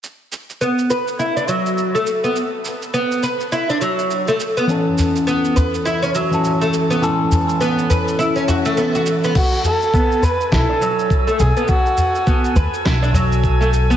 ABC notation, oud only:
X:1
M:4/4
L:1/16
Q:"Swing 16ths" 1/4=103
K:A
V:1 name="Oud"
z4 B,2 B z E D F,3 A, z B, | z4 B,2 B z E D F,3 A, z B, | z4 B,2 B z E C F,3 A, z B, | z4 B,2 B z E C F A, B, F z B, |
z4 B,2 B z E D F,3 A, z B, | z4 B,2 B z E D F,3 A, z B, |]